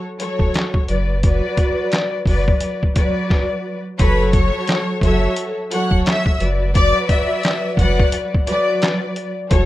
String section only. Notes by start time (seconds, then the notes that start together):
0.19 F#3 F#4 A4 C#5
0.88 F#3 F#4 B4 D5
1.22 F#3 F#4 B4 D5
2.27 F#3 F#4 B4 D5
2.95 F#3 F#4 B4 D5
3.97 F#3 F#4 A4 C#5
5.01 F#3 F#4 A4 C#5
5.71 F#3 F#4 A4 C#5
6.40 F#3 F#4 B4 D5
6.73 F#3 F#4 B4 D5
7.78 F#3 F#4 B4 D5
8.47 F#3 F#4 B4 D5
9.49 F#3 F#4 A4 C#5